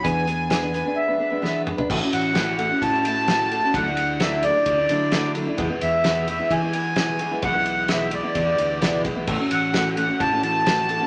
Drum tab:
CC |----------------|x---------------|----------------|----------------|
RD |----------------|--x-x-x-x-x-x-x-|x-x-x-x-x-x-x-x-|x-x-x-x-x-x-x-x-|
HH |x-x-x-x---------|----------------|----------------|----------------|
SD |----o-------o---|----o-------o---|----o-------o---|----o-------o---|
T2 |--------------o-|----------------|----------------|----------------|
FT |---------------o|----------------|----------------|----------------|
BD |o---------------|o-------o-------|o-------o-------|o-------o-------|

CC |----------------|x---------------|
RD |x-x-x-x-x-x-x-x-|--x-x-x-x-x-x-x-|
HH |----------------|----------------|
SD |----o-------o---|----o-------o---|
T2 |----------------|----------------|
FT |----------------|----------------|
BD |o-------o-----o-|o-------o-------|